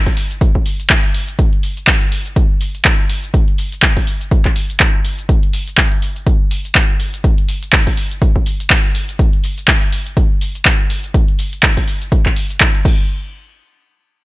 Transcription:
0.06 kick, open hi-hat
0.17 open hi-hat, shaker
0.31 closed hi-hat, shaker
0.41 kick, closed hi-hat, shaker
0.55 kick
0.66 open hi-hat, shaker
0.80 closed hi-hat, shaker
0.90 kick, clap, closed hi-hat, shaker
1.14 open hi-hat, shaker
1.28 closed hi-hat, shaker
1.39 kick, closed hi-hat, shaker
1.53 closed hi-hat
1.63 open hi-hat, shaker
1.77 closed hi-hat, shaker
1.87 kick, clap, closed hi-hat, shaker
2.02 closed hi-hat
2.12 open hi-hat, shaker
2.26 closed hi-hat, shaker
2.36 kick, closed hi-hat, shaker
2.61 open hi-hat, shaker
2.75 closed hi-hat, shaker
2.85 kick, clap, closed hi-hat, shaker
3.10 open hi-hat, shaker
3.24 closed hi-hat, shaker
3.34 kick, closed hi-hat, shaker
3.48 closed hi-hat
3.58 open hi-hat, shaker
3.72 closed hi-hat, shaker
3.82 kick, clap, closed hi-hat, shaker
3.97 kick, open hi-hat
4.07 open hi-hat, shaker
4.21 closed hi-hat, shaker
4.31 kick, closed hi-hat, shaker
4.45 kick, clap
4.56 open hi-hat, shaker
4.70 closed hi-hat, shaker
4.80 kick, clap, closed hi-hat, shaker
5.05 open hi-hat, shaker
5.19 closed hi-hat, shaker
5.29 kick, closed hi-hat, shaker
5.43 closed hi-hat
5.53 open hi-hat, shaker
5.67 closed hi-hat, shaker
5.78 kick, clap, closed hi-hat, shaker
5.92 closed hi-hat
6.02 open hi-hat, shaker
6.16 closed hi-hat, shaker
6.27 kick, closed hi-hat, shaker
6.51 open hi-hat, shaker
6.65 closed hi-hat, shaker
6.75 kick, clap, closed hi-hat, shaker
7.00 open hi-hat, shaker
7.14 closed hi-hat, shaker
7.24 kick, closed hi-hat, shaker
7.38 closed hi-hat
7.49 open hi-hat, shaker
7.63 closed hi-hat, shaker
7.73 kick, clap, closed hi-hat, shaker
7.87 kick, open hi-hat
7.97 open hi-hat, shaker
8.11 closed hi-hat, shaker
8.22 kick, closed hi-hat, shaker
8.36 kick
8.46 open hi-hat, shaker
8.60 closed hi-hat, shaker
8.70 kick, clap, closed hi-hat, shaker
8.95 open hi-hat, shaker
9.09 closed hi-hat, shaker
9.19 kick, closed hi-hat, shaker
9.33 closed hi-hat
9.44 open hi-hat, shaker
9.58 closed hi-hat, shaker
9.68 kick, clap, closed hi-hat, shaker
9.82 closed hi-hat
9.92 open hi-hat, shaker
10.06 closed hi-hat, shaker
10.17 kick, closed hi-hat, shaker
10.41 open hi-hat, shaker
10.55 closed hi-hat, shaker
10.65 kick, clap, closed hi-hat, shaker
10.90 open hi-hat, shaker
11.04 closed hi-hat, shaker
11.14 kick, closed hi-hat, shaker
11.28 closed hi-hat
11.39 open hi-hat, shaker
11.53 closed hi-hat, shaker
11.63 kick, clap, closed hi-hat, shaker
11.77 kick, open hi-hat
11.88 open hi-hat, shaker
12.02 closed hi-hat, shaker
12.12 kick, closed hi-hat, shaker
12.26 kick, clap
12.36 open hi-hat, shaker
12.50 closed hi-hat, shaker
12.60 kick, clap, closed hi-hat, shaker
12.75 closed hi-hat
12.85 kick, crash

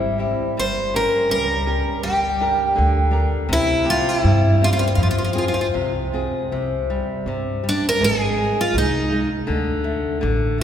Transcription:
Already playing: G#1 G3 E4
0.18 C4 E4 G4
0.57 G1 G3 C5
0.94 C#4 G4 A#4
1.29 C#2 G3 A#4
1.66 C#4 G4 A#4
2.03 G1 G3 G4
2.40 D4 G4 A#4
2.76 D2 D3
3.11 D4 G4 A#4
3.49 C2 C3
3.53 E4
3.84 C4 E4 G4
3.90 F4
4.09 E4
4.23 G2 G3
4.61 C4 E4 F4 G4
4.73 F4
4.79 F4
4.88 F4
4.95 F2 F3 F4
5.03 F4
5.11 F4
5.18 F4
5.24 F4
5.33 C4 F4 G#4
5.38 F4
5.48 F4
5.54 F4
5.61 F4
5.74 C2 C3
6.13 C4 F4 G#4
6.52 C2 C3
6.90 G3
7.26 G2 C3
7.64 G3
7.69 D4
7.89 A#4
8.01 G#1 G#3 G#4
8.38 G#3
8.61 F4
8.74 C2 G#3
8.78 D#4
9.12 G#3
9.47 D2 D3
9.84 A3
10.21 A1 D3
10.58 A3

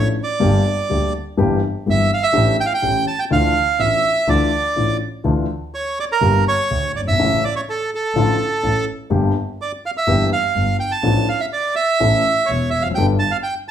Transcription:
Already playing: A1 A2 F3 A3 D4 A4
0.24 D5
0.40 G1 G2 D3 G3 A#3 G4
0.89 D2 D3 G3 A#3 G4
1.37 G1 G2 E3 G3 A#3 G4
1.86 G1 G2 E3 G3 A#3 G4
1.90 E5
2.13 F5
2.23 E5
2.33 A1 A2 E3 A3 D4 G4
2.37 A1
2.60 G5
2.66 F5
2.74 G5
2.82 A1 A2 E3 A3 C#4 G4
3.08 A5
3.19 G5
3.30 D2 D3 E3 A3 D4 F4 F5
3.79 A1 A2 E3 A3 D4 F4 E5
4.27 D2 D3 E3 A3 D4 F4 D5
4.76 A1 A2 E3 A3 D4 F4
5.24 D2 D3 E3 A3 D4 F4
5.74 C#5
6.00 D5
6.12 A#4
6.21 G1 G2 D3 G3 A#3 G4
6.48 C#5
6.70 D2 D3
6.95 G1 D5
7.01 F#1
7.08 G1 E5
7.13 G#1
7.19 A1 A2 C#3 E3 A3 E4
7.44 D5
7.56 C#5
7.70 A4
7.95 A4
8.15 A1 A2 D3 F3 A3 F4
8.63 A1 A2
9.10 G1 G2 D3 G3 A#3 G4
9.62 D5
9.86 F5
9.97 E5
10.07 G1 G2 E3 G3 A#3 G4
10.33 F5
10.55 G1 G2
10.80 G5
10.92 A5
11.03 A1 A2 F3 A3 D4 A4
11.29 F5
11.40 E5
11.53 D5
11.76 E5
12.00 A1 A2 E3 A3 C#4 A4
12.46 E1 E2 C#5
12.50 E1
12.70 E5
12.74 F1
12.80 E2 F5
12.86 F2
12.91 F#2 G5
12.97 G1 G2 G3 B3 D4 A4
13.19 A5
13.31 F5
13.43 G5

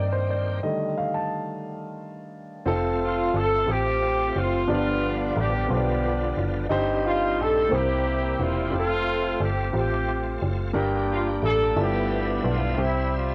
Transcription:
Already playing: G2 D#3 A#3 C4 D4 G4 D5 D#5 G5 A#5
0.13 C5
0.30 D5
0.63 D3 D#3 G3 A3 D#5
0.98 F5
1.14 A5
2.65 F1 A3 C4 D#4 F4 A4
2.73 F4
3.04 F4
3.34 G1 A4
3.66 A1 C4 F4 G4
3.71 C4 G4
4.36 F#1 F4
4.67 G1 G2 D3 F3 G3 B3 D4 F4 G4 D5
5.37 A1 G4
5.68 B1 B3 D4 F4 G4 C5
5.73 B3 D4
5.77 D5
6.37 F#1
6.69 G1 G2 G3 C4 D#4 G4 C5
7.06 F4
7.38 A#1 A4
7.69 C2 C3 G3 A#3 C4 E4 F4 G4 C5
7.74 A#3 E4 G4
7.79 G4
8.40 E1 F4
8.71 F1 A3 C4 F4 G4
8.76 A3 C4 F4 A4
9.40 G1 G4
9.72 A1 C4 F4 G4
9.77 C4 G4
10.42 F#1
10.73 G1 G2 A#3 D4 F#4 G4
10.81 G4
11.13 F4
11.43 A1 A4
11.75 G1 G2 F3 G3 A3 B3 E4 F4 G4 A4 E5
11.80 B3 D4 G4
12.44 B1
12.49 F4
12.77 C2 C3 G3 C4 D#4 G4 E5
12.81 G3 E4 E5
13.16 F4

